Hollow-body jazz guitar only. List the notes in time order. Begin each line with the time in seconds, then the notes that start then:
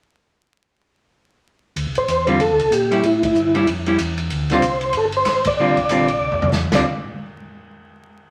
2.27 D3 G3 C4 F4
2.91 G3 C#4 E4
3.55 G3 C#4 E4
3.87 G3 C#4 E4
4.51 D3 G3 C4 F4
5.59 D3 G3 C4 F4
5.90 D3 G3 C4 F4
6.73 D3 G3 C4 F4